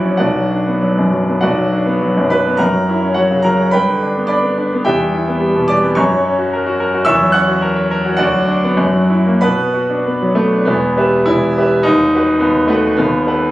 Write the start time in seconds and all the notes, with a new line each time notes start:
Already playing: A#1 F#3 E4 F#4 D5 F#5
0.04 C#4
0.17 B1 F#4 D5 F#5
0.35 F#3
0.51 D4
0.66 B3
0.82 F#3
0.98 F#2
1.13 F#3
1.28 B3
1.41 B1 F#4 D5 F#5
1.58 F#3
1.73 D4
1.86 B3
2.02 F#3
2.17 F#2
2.30 F#3 B4 B5
2.46 B3
2.57 F#2 A#4 F#5 A#5
2.73 F#3
2.89 E4
3.02 C#4
3.14 F#3 F#4 C#5 F#5
3.31 C#3
3.42 F#3 A#4 A#5
3.59 C#4
3.71 G2 B4 G5 B5
3.89 D3
4.03 D4
4.16 B3
4.27 D4 D5 B5 D6
4.43 B3
4.58 D4
4.73 B3
4.85 E2 G4 E5 G5
4.99 G3
5.13 E4
5.28 B3
5.40 G3
5.55 B2
5.68 G3 D5 D6
5.84 B3
5.95 F#2 C#5 A#5 C#6
6.11 F#3
6.25 C#4
6.39 F#4
6.53 A#4
6.66 F#4
6.80 A#4
6.94 F#4
7.05 E2 E5 C#6 E6
7.21 F#3
7.32 C#4 F#5 C#6 F#6
7.48 F#4
7.62 A#4
7.76 C#5
7.91 A#4
8.06 F#4
8.17 D2 F#4 D5 F#5
8.34 F#3
8.48 D4
8.64 B3
8.77 F#2
8.93 F#3
9.10 E4
9.26 A#3
9.41 B2 B4 F#5 B5
9.59 B3
9.74 F#4
9.90 D4
10.06 B3
10.22 F#3
10.35 A3 B3
10.53 D4
10.65 E1 E2 B3
10.97 G4 B4 E5
11.26 E1 E2 E4
11.57 G4 B4 E5
11.83 D#1 D#2 D#4
12.14 F#4 B4 F#5
12.39 D#1 D#2 B3
12.68 A3 F#4 B4 F#5
12.97 D#1 D#2 B3
13.27 A4 B4 F#5